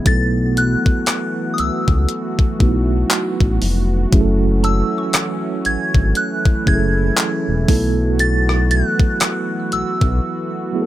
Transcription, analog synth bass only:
0.06 B1
1.59 C#2
1.88 C#2
2.39 B1
2.61 B1
3.41 A1
3.62 F1
4.13 F#1
5.66 G#1
5.95 G#1
6.46 F#1
6.67 F#1
7.48 E1
7.69 B1
9.73 B1
10.02 B1

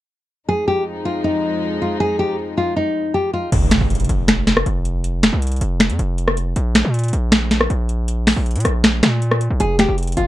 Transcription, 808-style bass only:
3.52 F1
3.81 F1
4.09 F1
4.66 F1
5.33 C2
5.61 F1
5.90 F2
5.99 F1
6.56 A#1
6.85 A#2
7.13 A#1
7.70 A#1
8.36 A#1
8.55 A#2
8.65 A#1
9.03 A#2
9.50 A#1
9.60 F1
9.88 F1
10.17 F1

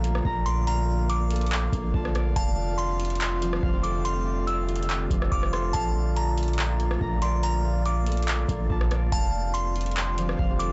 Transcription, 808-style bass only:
Already playing: A#1
0.25 A#1
1.73 A#1
1.94 A#1
2.36 F1
3.63 F1
5.11 F1
5.32 F1
5.74 A#1
7.01 A#1
8.49 A#1
8.70 A#1
9.12 F1
10.39 F1

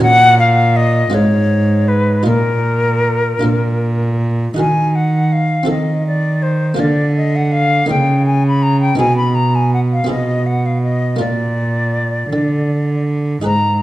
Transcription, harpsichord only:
Already playing: C#4
0.00 A#2 F#4 A#4
1.10 B3 F4 B4
1.14 G#2
2.23 D#4 F4 A#4
2.27 A#2
3.39 D4 F4 A#4
3.44 A#2
4.54 D#4 F#4 A#4
4.59 D#3
5.63 C4 F4 A4
5.68 D#3
6.74 A#3 F4 A#4
6.79 D3
7.86 A#3 D#4 A#4
7.91 C#3
8.95 B3 D#4 G#4
9.00 B2
10.04 B3 F4 G#4
10.09 B2
11.16 A#3 F4 A#4
11.21 A#2
12.33 D3
13.41 D#4 G#4 B4
13.46 G#2

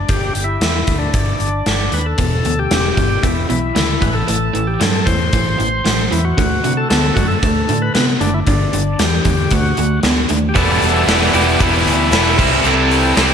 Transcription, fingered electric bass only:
0.09 G1
0.35 G1
0.61 E2
0.88 D2
1.14 G1
1.40 G1
1.66 G1
1.92 D#2
2.19 E1
2.45 D2
2.71 E1
2.97 G1
3.24 E1
3.50 B1
3.76 D2
4.02 A1
4.28 A1
4.54 A1
4.81 G2
5.07 E2
5.33 A1
5.59 A1
5.85 A1
6.12 E2
6.38 D2
6.64 C3
6.90 D2
7.17 F#2
7.43 D2
7.69 A2
7.95 C3
8.21 F#1
8.47 G1
8.73 G1
8.99 E2
9.25 E2
9.51 D2
9.78 D2
10.03 D2
10.30 D#2
10.56 E1
10.82 E1
11.07 E1
11.34 E1
11.61 E1
11.85 D2
12.12 E1
12.39 C2
12.64 C2
13.17 C2

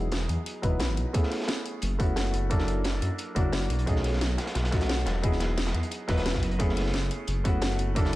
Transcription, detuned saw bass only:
Already playing: E1
0.29 E2
0.63 E1
0.80 B1
0.89 G#1
0.97 B1
1.83 F#1
2.00 F#1
2.34 F#1
3.02 F#2
3.36 F#1
3.70 B1
4.55 B1
4.72 B1
5.06 E1
5.74 E2
6.09 E1
6.34 B1
6.43 F#1
7.28 F#1
7.45 F#1
7.79 F#1

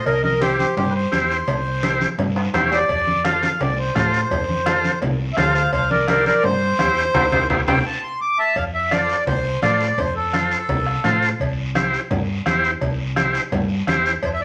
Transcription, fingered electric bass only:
0.06 C2
0.77 G2
1.12 E2
1.48 C2
2.18 G2
2.54 E2
2.89 F2
3.60 C2
3.96 A2
4.31 F2
5.02 C2
5.37 D2
5.72 C2
6.43 G2
6.79 E2
7.14 C2
7.32 C2
7.50 C2
7.67 C2
8.56 F2
9.27 C2
9.63 A2
9.98 F2
10.69 C2
11.04 A2
11.39 C2
12.11 G2
12.46 E2
12.81 C2
13.52 G2
13.87 E2
14.23 F2

